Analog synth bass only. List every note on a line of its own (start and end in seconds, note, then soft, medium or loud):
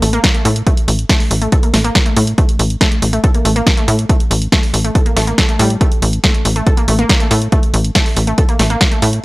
0.02 0.20 A1 medium
0.45 0.63 A2 loud
0.88 1.05 A1 loud
1.31 1.48 A1 loud
1.74 1.91 A1 medium
2.17 2.34 A2 medium
2.59 2.77 A1 loud
3.02 3.20 A1 medium
3.45 3.63 A1 medium
3.88 4.05 A2 loud
4.31 4.48 A1 loud
4.74 4.91 A1 medium
5.16 5.34 A1 medium
5.59 5.77 A2 loud
6.02 6.20 A1 loud
6.45 6.63 A1 medium
6.88 7.05 A1 medium
7.31 7.48 A2 loud
7.74 7.91 A1 loud
8.17 8.34 A1 medium
8.59 8.77 A1 medium
9.02 9.20 A2 loud